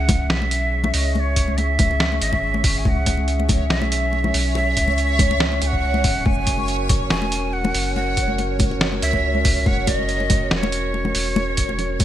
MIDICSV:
0, 0, Header, 1, 6, 480
1, 0, Start_track
1, 0, Tempo, 425532
1, 1298, Time_signature, 4, 2, 24, 8
1, 13588, End_track
2, 0, Start_track
2, 0, Title_t, "Shakuhachi"
2, 0, Program_c, 0, 77
2, 0, Note_on_c, 0, 78, 102
2, 342, Note_on_c, 0, 76, 106
2, 358, Note_off_c, 0, 78, 0
2, 1058, Note_on_c, 0, 75, 95
2, 1075, Note_off_c, 0, 76, 0
2, 1298, Note_off_c, 0, 75, 0
2, 1298, Note_on_c, 0, 75, 91
2, 1351, Note_on_c, 0, 73, 99
2, 1363, Note_off_c, 0, 75, 0
2, 1776, Note_on_c, 0, 76, 101
2, 1793, Note_off_c, 0, 73, 0
2, 2491, Note_off_c, 0, 76, 0
2, 2498, Note_on_c, 0, 76, 105
2, 3139, Note_on_c, 0, 80, 79
2, 3156, Note_off_c, 0, 76, 0
2, 3215, Note_off_c, 0, 80, 0
2, 3215, Note_on_c, 0, 80, 97
2, 3258, Note_on_c, 0, 78, 106
2, 3269, Note_off_c, 0, 80, 0
2, 3875, Note_off_c, 0, 78, 0
2, 4174, Note_on_c, 0, 75, 112
2, 4298, Note_off_c, 0, 75, 0
2, 4298, Note_on_c, 0, 76, 112
2, 5091, Note_off_c, 0, 76, 0
2, 5137, Note_on_c, 0, 76, 120
2, 6339, Note_on_c, 0, 80, 105
2, 6356, Note_off_c, 0, 76, 0
2, 6392, Note_on_c, 0, 78, 115
2, 6404, Note_off_c, 0, 80, 0
2, 7054, Note_on_c, 0, 80, 123
2, 7071, Note_off_c, 0, 78, 0
2, 7776, Note_off_c, 0, 80, 0
2, 8012, Note_on_c, 0, 80, 114
2, 8494, Note_on_c, 0, 78, 108
2, 8511, Note_off_c, 0, 80, 0
2, 8967, Note_off_c, 0, 78, 0
2, 8974, Note_on_c, 0, 78, 105
2, 9651, Note_off_c, 0, 78, 0
2, 10179, Note_on_c, 0, 76, 112
2, 10904, Note_on_c, 0, 78, 120
2, 10921, Note_off_c, 0, 76, 0
2, 11144, Note_on_c, 0, 75, 121
2, 11160, Note_off_c, 0, 78, 0
2, 11863, Note_off_c, 0, 75, 0
2, 11863, Note_on_c, 0, 75, 98
2, 11914, Note_on_c, 0, 73, 107
2, 11925, Note_off_c, 0, 75, 0
2, 13588, Note_off_c, 0, 73, 0
2, 13588, End_track
3, 0, Start_track
3, 0, Title_t, "Synth texture"
3, 0, Program_c, 1, 99
3, 0, Note_on_c, 1, 73, 88
3, 13588, Note_off_c, 1, 73, 0
3, 13588, End_track
4, 0, Start_track
4, 0, Title_t, "Analog synth pad"
4, 0, Program_c, 2, 89
4, 0, Note_on_c, 2, 61, 83
4, 0, Note_on_c, 2, 68, 81
4, 0, Note_on_c, 2, 76, 100
4, 7013, Note_off_c, 2, 68, 0
4, 7013, Note_off_c, 2, 76, 0
4, 7055, Note_on_c, 2, 66, 76
4, 7055, Note_on_c, 2, 70, 97
4, 13588, Note_off_c, 2, 61, 0
4, 13588, Note_off_c, 2, 66, 0
4, 13588, Note_off_c, 2, 70, 0
4, 13588, End_track
5, 0, Start_track
5, 0, Title_t, "Sub bass"
5, 0, Program_c, 3, 38
5, 0, Note_on_c, 3, 37, 105
5, 320, Note_off_c, 3, 37, 0
5, 338, Note_on_c, 3, 35, 93
5, 1040, Note_off_c, 3, 35, 0
5, 1061, Note_on_c, 3, 37, 101
5, 2481, Note_off_c, 3, 37, 0
5, 2500, Note_on_c, 3, 32, 99
5, 3201, Note_off_c, 3, 32, 0
5, 3219, Note_on_c, 3, 37, 107
5, 4160, Note_off_c, 3, 37, 0
5, 4178, Note_on_c, 3, 35, 96
5, 4880, Note_off_c, 3, 35, 0
5, 4897, Note_on_c, 3, 35, 96
5, 5360, Note_off_c, 3, 35, 0
5, 5379, Note_on_c, 3, 37, 97
5, 6320, Note_off_c, 3, 37, 0
5, 6338, Note_on_c, 3, 37, 98
5, 7040, Note_off_c, 3, 37, 0
5, 7058, Note_on_c, 3, 30, 109
5, 8000, Note_off_c, 3, 30, 0
5, 8018, Note_on_c, 3, 28, 92
5, 8720, Note_off_c, 3, 28, 0
5, 8737, Note_on_c, 3, 30, 98
5, 10159, Note_off_c, 3, 30, 0
5, 10178, Note_on_c, 3, 37, 94
5, 10880, Note_off_c, 3, 37, 0
5, 10900, Note_on_c, 3, 30, 108
5, 11841, Note_off_c, 3, 30, 0
5, 11859, Note_on_c, 3, 28, 103
5, 12560, Note_off_c, 3, 28, 0
5, 12578, Note_on_c, 3, 28, 97
5, 13520, Note_off_c, 3, 28, 0
5, 13538, Note_on_c, 3, 30, 101
5, 13588, Note_off_c, 3, 30, 0
5, 13588, End_track
6, 0, Start_track
6, 0, Title_t, "Drums"
6, 95, Note_on_c, 9, 64, 93
6, 98, Note_on_c, 9, 42, 82
6, 100, Note_on_c, 9, 36, 108
6, 103, Note_on_c, 9, 63, 100
6, 109, Note_on_c, 9, 62, 77
6, 207, Note_off_c, 9, 64, 0
6, 211, Note_off_c, 9, 42, 0
6, 213, Note_off_c, 9, 36, 0
6, 216, Note_off_c, 9, 63, 0
6, 222, Note_off_c, 9, 62, 0
6, 338, Note_on_c, 9, 38, 120
6, 451, Note_off_c, 9, 38, 0
6, 471, Note_on_c, 9, 63, 75
6, 473, Note_on_c, 9, 62, 59
6, 578, Note_on_c, 9, 42, 84
6, 584, Note_off_c, 9, 63, 0
6, 586, Note_off_c, 9, 62, 0
6, 691, Note_off_c, 9, 42, 0
6, 943, Note_on_c, 9, 64, 95
6, 945, Note_on_c, 9, 63, 82
6, 949, Note_on_c, 9, 62, 88
6, 1056, Note_off_c, 9, 64, 0
6, 1057, Note_on_c, 9, 46, 94
6, 1058, Note_off_c, 9, 63, 0
6, 1062, Note_off_c, 9, 62, 0
6, 1170, Note_off_c, 9, 46, 0
6, 1298, Note_on_c, 9, 63, 95
6, 1304, Note_on_c, 9, 62, 51
6, 1411, Note_off_c, 9, 63, 0
6, 1417, Note_off_c, 9, 62, 0
6, 1538, Note_on_c, 9, 42, 87
6, 1539, Note_on_c, 9, 36, 64
6, 1651, Note_off_c, 9, 42, 0
6, 1652, Note_off_c, 9, 36, 0
6, 1665, Note_on_c, 9, 63, 74
6, 1778, Note_off_c, 9, 63, 0
6, 1779, Note_on_c, 9, 42, 40
6, 1785, Note_on_c, 9, 62, 83
6, 1892, Note_off_c, 9, 42, 0
6, 1898, Note_off_c, 9, 62, 0
6, 2017, Note_on_c, 9, 64, 90
6, 2018, Note_on_c, 9, 42, 85
6, 2019, Note_on_c, 9, 36, 115
6, 2024, Note_on_c, 9, 63, 100
6, 2129, Note_off_c, 9, 64, 0
6, 2131, Note_off_c, 9, 42, 0
6, 2132, Note_off_c, 9, 36, 0
6, 2137, Note_off_c, 9, 63, 0
6, 2153, Note_on_c, 9, 62, 49
6, 2258, Note_on_c, 9, 38, 125
6, 2265, Note_off_c, 9, 62, 0
6, 2371, Note_off_c, 9, 38, 0
6, 2391, Note_on_c, 9, 63, 72
6, 2499, Note_on_c, 9, 42, 83
6, 2504, Note_off_c, 9, 63, 0
6, 2611, Note_off_c, 9, 42, 0
6, 2625, Note_on_c, 9, 36, 64
6, 2625, Note_on_c, 9, 62, 81
6, 2737, Note_off_c, 9, 62, 0
6, 2738, Note_off_c, 9, 36, 0
6, 2866, Note_on_c, 9, 63, 92
6, 2975, Note_on_c, 9, 62, 50
6, 2977, Note_on_c, 9, 46, 98
6, 2978, Note_on_c, 9, 36, 111
6, 2979, Note_off_c, 9, 63, 0
6, 3087, Note_off_c, 9, 62, 0
6, 3090, Note_off_c, 9, 46, 0
6, 3091, Note_off_c, 9, 36, 0
6, 3218, Note_on_c, 9, 63, 93
6, 3219, Note_on_c, 9, 36, 127
6, 3331, Note_off_c, 9, 63, 0
6, 3332, Note_off_c, 9, 36, 0
6, 3456, Note_on_c, 9, 42, 81
6, 3459, Note_on_c, 9, 36, 65
6, 3460, Note_on_c, 9, 62, 72
6, 3569, Note_off_c, 9, 42, 0
6, 3572, Note_off_c, 9, 36, 0
6, 3573, Note_off_c, 9, 62, 0
6, 3580, Note_on_c, 9, 63, 66
6, 3693, Note_off_c, 9, 63, 0
6, 3697, Note_on_c, 9, 42, 37
6, 3810, Note_off_c, 9, 42, 0
6, 3830, Note_on_c, 9, 62, 53
6, 3932, Note_on_c, 9, 64, 85
6, 3935, Note_on_c, 9, 63, 97
6, 3939, Note_on_c, 9, 36, 118
6, 3939, Note_on_c, 9, 42, 82
6, 3943, Note_off_c, 9, 62, 0
6, 4045, Note_off_c, 9, 64, 0
6, 4048, Note_off_c, 9, 63, 0
6, 4052, Note_off_c, 9, 36, 0
6, 4052, Note_off_c, 9, 42, 0
6, 4177, Note_on_c, 9, 38, 127
6, 4290, Note_off_c, 9, 38, 0
6, 4304, Note_on_c, 9, 62, 79
6, 4305, Note_on_c, 9, 63, 79
6, 4417, Note_off_c, 9, 62, 0
6, 4417, Note_off_c, 9, 63, 0
6, 4420, Note_on_c, 9, 42, 86
6, 4532, Note_off_c, 9, 42, 0
6, 4655, Note_on_c, 9, 62, 49
6, 4768, Note_off_c, 9, 62, 0
6, 4784, Note_on_c, 9, 64, 92
6, 4786, Note_on_c, 9, 63, 104
6, 4897, Note_off_c, 9, 64, 0
6, 4897, Note_on_c, 9, 46, 94
6, 4899, Note_off_c, 9, 63, 0
6, 5010, Note_off_c, 9, 46, 0
6, 5135, Note_on_c, 9, 62, 79
6, 5137, Note_on_c, 9, 63, 102
6, 5248, Note_off_c, 9, 62, 0
6, 5250, Note_off_c, 9, 63, 0
6, 5377, Note_on_c, 9, 42, 81
6, 5379, Note_on_c, 9, 36, 62
6, 5490, Note_off_c, 9, 42, 0
6, 5492, Note_off_c, 9, 36, 0
6, 5500, Note_on_c, 9, 63, 70
6, 5502, Note_on_c, 9, 62, 50
6, 5613, Note_off_c, 9, 63, 0
6, 5615, Note_off_c, 9, 62, 0
6, 5616, Note_on_c, 9, 42, 35
6, 5729, Note_off_c, 9, 42, 0
6, 5853, Note_on_c, 9, 63, 99
6, 5854, Note_on_c, 9, 64, 89
6, 5856, Note_on_c, 9, 42, 80
6, 5858, Note_on_c, 9, 36, 113
6, 5966, Note_off_c, 9, 63, 0
6, 5967, Note_off_c, 9, 64, 0
6, 5969, Note_off_c, 9, 42, 0
6, 5971, Note_off_c, 9, 36, 0
6, 5988, Note_on_c, 9, 62, 77
6, 6095, Note_on_c, 9, 38, 127
6, 6101, Note_off_c, 9, 62, 0
6, 6208, Note_off_c, 9, 38, 0
6, 6225, Note_on_c, 9, 63, 66
6, 6335, Note_on_c, 9, 42, 80
6, 6338, Note_off_c, 9, 63, 0
6, 6340, Note_on_c, 9, 62, 51
6, 6448, Note_off_c, 9, 42, 0
6, 6453, Note_off_c, 9, 62, 0
6, 6464, Note_on_c, 9, 36, 67
6, 6577, Note_off_c, 9, 36, 0
6, 6702, Note_on_c, 9, 63, 96
6, 6814, Note_off_c, 9, 63, 0
6, 6814, Note_on_c, 9, 46, 88
6, 6814, Note_on_c, 9, 62, 74
6, 6818, Note_on_c, 9, 36, 113
6, 6927, Note_off_c, 9, 46, 0
6, 6927, Note_off_c, 9, 62, 0
6, 6931, Note_off_c, 9, 36, 0
6, 7057, Note_on_c, 9, 63, 96
6, 7059, Note_on_c, 9, 36, 120
6, 7170, Note_off_c, 9, 63, 0
6, 7171, Note_off_c, 9, 36, 0
6, 7295, Note_on_c, 9, 42, 77
6, 7295, Note_on_c, 9, 62, 53
6, 7299, Note_on_c, 9, 36, 60
6, 7408, Note_off_c, 9, 42, 0
6, 7408, Note_off_c, 9, 62, 0
6, 7412, Note_off_c, 9, 36, 0
6, 7419, Note_on_c, 9, 63, 65
6, 7532, Note_off_c, 9, 63, 0
6, 7536, Note_on_c, 9, 42, 36
6, 7649, Note_off_c, 9, 42, 0
6, 7776, Note_on_c, 9, 42, 80
6, 7777, Note_on_c, 9, 63, 101
6, 7778, Note_on_c, 9, 36, 106
6, 7781, Note_on_c, 9, 62, 78
6, 7781, Note_on_c, 9, 64, 76
6, 7889, Note_off_c, 9, 42, 0
6, 7890, Note_off_c, 9, 63, 0
6, 7891, Note_off_c, 9, 36, 0
6, 7893, Note_off_c, 9, 64, 0
6, 7894, Note_off_c, 9, 62, 0
6, 8014, Note_on_c, 9, 38, 118
6, 8126, Note_off_c, 9, 38, 0
6, 8141, Note_on_c, 9, 62, 57
6, 8141, Note_on_c, 9, 63, 65
6, 8254, Note_off_c, 9, 62, 0
6, 8254, Note_off_c, 9, 63, 0
6, 8255, Note_on_c, 9, 42, 77
6, 8368, Note_off_c, 9, 42, 0
6, 8621, Note_on_c, 9, 63, 95
6, 8625, Note_on_c, 9, 64, 91
6, 8626, Note_on_c, 9, 62, 77
6, 8734, Note_off_c, 9, 63, 0
6, 8736, Note_on_c, 9, 46, 89
6, 8737, Note_off_c, 9, 64, 0
6, 8739, Note_off_c, 9, 62, 0
6, 8849, Note_off_c, 9, 46, 0
6, 8980, Note_on_c, 9, 63, 86
6, 8983, Note_on_c, 9, 62, 53
6, 9092, Note_off_c, 9, 63, 0
6, 9096, Note_off_c, 9, 62, 0
6, 9217, Note_on_c, 9, 42, 79
6, 9219, Note_on_c, 9, 36, 60
6, 9329, Note_off_c, 9, 42, 0
6, 9332, Note_off_c, 9, 36, 0
6, 9336, Note_on_c, 9, 63, 71
6, 9449, Note_off_c, 9, 63, 0
6, 9457, Note_on_c, 9, 42, 35
6, 9460, Note_on_c, 9, 62, 74
6, 9570, Note_off_c, 9, 42, 0
6, 9572, Note_off_c, 9, 62, 0
6, 9691, Note_on_c, 9, 63, 92
6, 9696, Note_on_c, 9, 64, 80
6, 9697, Note_on_c, 9, 42, 76
6, 9699, Note_on_c, 9, 36, 102
6, 9804, Note_off_c, 9, 63, 0
6, 9809, Note_off_c, 9, 64, 0
6, 9810, Note_off_c, 9, 42, 0
6, 9812, Note_off_c, 9, 36, 0
6, 9827, Note_on_c, 9, 62, 53
6, 9938, Note_on_c, 9, 38, 117
6, 9940, Note_off_c, 9, 62, 0
6, 10051, Note_off_c, 9, 38, 0
6, 10066, Note_on_c, 9, 63, 71
6, 10179, Note_off_c, 9, 63, 0
6, 10180, Note_on_c, 9, 42, 75
6, 10292, Note_off_c, 9, 42, 0
6, 10301, Note_on_c, 9, 62, 76
6, 10305, Note_on_c, 9, 36, 58
6, 10414, Note_off_c, 9, 62, 0
6, 10418, Note_off_c, 9, 36, 0
6, 10542, Note_on_c, 9, 63, 89
6, 10651, Note_on_c, 9, 62, 52
6, 10655, Note_off_c, 9, 63, 0
6, 10658, Note_on_c, 9, 46, 92
6, 10659, Note_on_c, 9, 36, 102
6, 10764, Note_off_c, 9, 62, 0
6, 10771, Note_off_c, 9, 46, 0
6, 10772, Note_off_c, 9, 36, 0
6, 10899, Note_on_c, 9, 36, 119
6, 10899, Note_on_c, 9, 63, 95
6, 11012, Note_off_c, 9, 36, 0
6, 11012, Note_off_c, 9, 63, 0
6, 11136, Note_on_c, 9, 62, 91
6, 11138, Note_on_c, 9, 42, 75
6, 11140, Note_on_c, 9, 36, 60
6, 11249, Note_off_c, 9, 62, 0
6, 11251, Note_off_c, 9, 42, 0
6, 11253, Note_off_c, 9, 36, 0
6, 11267, Note_on_c, 9, 63, 61
6, 11378, Note_on_c, 9, 42, 38
6, 11380, Note_off_c, 9, 63, 0
6, 11491, Note_off_c, 9, 42, 0
6, 11508, Note_on_c, 9, 62, 53
6, 11616, Note_on_c, 9, 42, 79
6, 11616, Note_on_c, 9, 63, 91
6, 11620, Note_on_c, 9, 36, 105
6, 11620, Note_on_c, 9, 64, 79
6, 11621, Note_off_c, 9, 62, 0
6, 11729, Note_off_c, 9, 42, 0
6, 11729, Note_off_c, 9, 63, 0
6, 11733, Note_off_c, 9, 36, 0
6, 11733, Note_off_c, 9, 64, 0
6, 11857, Note_on_c, 9, 38, 117
6, 11970, Note_off_c, 9, 38, 0
6, 11987, Note_on_c, 9, 63, 68
6, 11993, Note_on_c, 9, 62, 98
6, 12096, Note_on_c, 9, 42, 77
6, 12100, Note_off_c, 9, 63, 0
6, 12106, Note_off_c, 9, 62, 0
6, 12209, Note_off_c, 9, 42, 0
6, 12341, Note_on_c, 9, 62, 58
6, 12454, Note_off_c, 9, 62, 0
6, 12463, Note_on_c, 9, 64, 84
6, 12464, Note_on_c, 9, 63, 89
6, 12574, Note_on_c, 9, 46, 97
6, 12576, Note_off_c, 9, 64, 0
6, 12577, Note_off_c, 9, 63, 0
6, 12687, Note_off_c, 9, 46, 0
6, 12816, Note_on_c, 9, 63, 98
6, 12817, Note_on_c, 9, 62, 91
6, 12929, Note_off_c, 9, 63, 0
6, 12930, Note_off_c, 9, 62, 0
6, 13054, Note_on_c, 9, 42, 83
6, 13058, Note_on_c, 9, 36, 64
6, 13167, Note_off_c, 9, 42, 0
6, 13171, Note_off_c, 9, 36, 0
6, 13186, Note_on_c, 9, 62, 53
6, 13194, Note_on_c, 9, 63, 65
6, 13294, Note_on_c, 9, 64, 76
6, 13296, Note_on_c, 9, 42, 37
6, 13299, Note_off_c, 9, 62, 0
6, 13307, Note_off_c, 9, 63, 0
6, 13406, Note_off_c, 9, 64, 0
6, 13409, Note_off_c, 9, 42, 0
6, 13530, Note_on_c, 9, 63, 91
6, 13535, Note_on_c, 9, 42, 83
6, 13538, Note_on_c, 9, 36, 110
6, 13544, Note_on_c, 9, 64, 78
6, 13588, Note_off_c, 9, 36, 0
6, 13588, Note_off_c, 9, 42, 0
6, 13588, Note_off_c, 9, 63, 0
6, 13588, Note_off_c, 9, 64, 0
6, 13588, End_track
0, 0, End_of_file